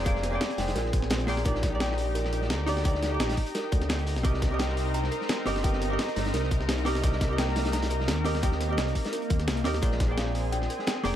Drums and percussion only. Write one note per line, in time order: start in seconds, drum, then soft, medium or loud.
0.06 kick loud
0.06 closed hi-hat medium
0.15 snare soft
0.23 snare medium
0.23 closed hi-hat medium
0.41 snare loud
0.41 closed hi-hat medium
0.50 snare soft
0.50 closed hi-hat soft
0.58 snare loud
0.58 closed hi-hat medium
0.58 open hi-hat medium
0.68 snare loud
0.68 closed hi-hat medium
0.76 snare loud
0.76 closed hi-hat medium
0.85 snare soft
0.93 kick loud
0.93 closed hi-hat medium
1.02 snare medium
1.10 snare loud
1.10 closed hi-hat medium
1.20 closed hi-hat soft
1.28 closed hi-hat medium
1.28 open hi-hat medium
1.37 snare medium
1.37 closed hi-hat soft
1.45 kick loud
1.45 closed hi-hat medium
1.55 snare medium
1.63 kick loud
1.63 snare soft
1.63 snare medium
1.63 closed hi-hat medium
1.80 snare loud
1.80 closed hi-hat medium
1.91 snare medium
1.98 closed hi-hat medium
1.98 open hi-hat medium
2.15 closed hi-hat medium
2.25 snare soft
2.33 closed hi-hat medium
2.42 snare medium
2.50 snare loud
2.50 closed hi-hat medium
2.67 closed hi-hat medium
2.67 open hi-hat medium
2.77 snare medium
2.85 kick loud
2.85 closed hi-hat medium
2.94 snare soft
3.03 snare loud
3.03 snare soft
3.03 closed hi-hat medium
3.20 snare loud
3.20 closed hi-hat medium
3.29 snare soft
3.29 snare loud
3.29 closed hi-hat medium
3.37 kick medium
3.37 open hi-hat medium
3.46 closed hi-hat medium
3.55 snare loud
3.55 closed hi-hat medium
3.72 kick loud
3.72 closed hi-hat medium
3.82 snare soft
3.82 closed hi-hat soft
3.89 snare loud
3.89 closed hi-hat medium
3.99 closed hi-hat soft
4.07 closed hi-hat medium
4.07 open hi-hat medium
4.16 snare medium
4.16 closed hi-hat soft
4.25 kick loud
4.25 closed hi-hat medium
4.34 snare medium
4.42 kick loud
4.42 snare medium
4.42 snare soft
4.42 closed hi-hat medium
4.59 snare loud
4.59 closed hi-hat loud
4.59 closed hi-hat medium
4.68 snare soft
4.77 closed hi-hat medium
4.77 open hi-hat medium
4.94 closed hi-hat medium
5.04 snare soft
5.11 closed hi-hat medium
5.21 snare medium
5.29 snare loud
5.29 closed hi-hat medium
5.47 closed hi-hat medium
5.47 open hi-hat medium
5.56 snare soft
5.56 snare medium
5.64 kick loud
5.64 closed hi-hat medium
5.73 snare soft
5.82 snare soft
5.82 closed hi-hat medium
5.99 snare loud
5.99 closed hi-hat medium
6.08 snare soft
6.08 closed hi-hat soft
6.16 snare loud
6.16 closed hi-hat medium
6.16 open hi-hat medium
6.25 snare medium
6.25 closed hi-hat medium
6.34 snare loud
6.34 closed hi-hat loud
6.34 closed hi-hat medium
6.43 snare soft
6.51 kick loud
6.51 closed hi-hat medium
6.61 snare soft
6.69 snare loud
6.69 closed hi-hat medium
6.78 closed hi-hat soft
6.86 closed hi-hat medium
6.86 open hi-hat medium
6.95 snare medium
6.95 closed hi-hat soft
7.04 kick loud
7.04 closed hi-hat loud
7.04 closed hi-hat medium
7.12 snare medium
7.21 kick loud
7.21 snare medium
7.21 snare soft
7.21 closed hi-hat medium
7.38 snare loud
7.38 closed hi-hat medium
7.48 snare medium
7.56 snare loud
7.56 closed hi-hat medium
7.56 open hi-hat medium
7.65 snare loud
7.65 closed hi-hat medium
7.72 snare loud
7.72 closed hi-hat medium
7.72 closed hi-hat loud
7.82 snare loud
7.82 snare soft
7.82 closed hi-hat medium
7.90 closed hi-hat medium
8.00 snare medium
8.08 snare loud
8.08 closed hi-hat loud
8.25 closed hi-hat medium
8.25 open hi-hat medium
8.35 snare soft
8.35 snare medium
8.43 kick loud
8.43 closed hi-hat medium
8.43 closed hi-hat loud
8.52 snare medium
8.61 snare soft
8.61 closed hi-hat medium
8.77 snare loud
8.77 closed hi-hat medium
8.77 closed hi-hat loud
8.87 snare soft
8.87 closed hi-hat soft
8.95 kick medium
8.95 closed hi-hat medium
8.95 open hi-hat medium
9.05 snare loud
9.05 closed hi-hat soft
9.05 closed hi-hat medium
9.13 closed hi-hat loud
9.13 closed hi-hat medium
9.22 closed hi-hat soft
9.30 kick loud
9.30 closed hi-hat medium
9.40 snare soft
9.40 closed hi-hat soft
9.48 snare loud
9.48 closed hi-hat loud
9.48 closed hi-hat medium
9.57 closed hi-hat soft
9.65 snare medium
9.65 closed hi-hat medium
9.65 open hi-hat medium
9.74 snare medium
9.74 closed hi-hat soft
9.82 kick loud
9.82 closed hi-hat medium
9.82 closed hi-hat loud
9.91 snare medium
10.00 kick loud
10.00 snare soft
10.00 closed hi-hat medium
10.18 snare loud
10.18 closed hi-hat medium
10.18 closed hi-hat loud
10.26 snare soft
10.35 closed hi-hat medium
10.35 open hi-hat medium
10.53 closed hi-hat loud
10.53 closed hi-hat medium
10.62 snare soft
10.70 closed hi-hat medium
10.79 snare soft
10.87 snare loud
10.87 closed hi-hat medium
10.87 closed hi-hat loud
11.05 closed hi-hat medium
11.05 open hi-hat medium